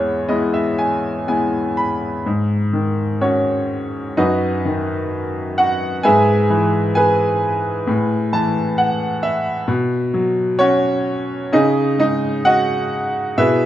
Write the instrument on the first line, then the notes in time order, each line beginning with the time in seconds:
grand piano
Already playing: E2 G#3 B3 E4 G#4 C#5 E5
0.28 G#3 B3 E4 D#5
0.54 E5
0.79 G#5
1.27 G#3 B3 E4 G#5
1.77 B5
2.26 G#2
2.73 D#3
3.21 C#4 F#4 C#5
4.17 F#2 D#4 F#4 B4 D#5
4.65 D#3
5.58 F#4 F#5
6.03 G#2 G#4 B4 E5 G#5
6.50 E3
6.95 G#4 B4 G#5
7.87 A2
8.33 E3 A5
8.78 F#5
9.23 E5
9.68 B2
10.14 F#3
10.59 C#4 F#4 C#5
11.52 C#3 D#4 G#4 D#5
11.98 G#3 D#4 D#5
12.45 F#4 D#5 F#5
13.38 B2 E4 G#4 B4 E5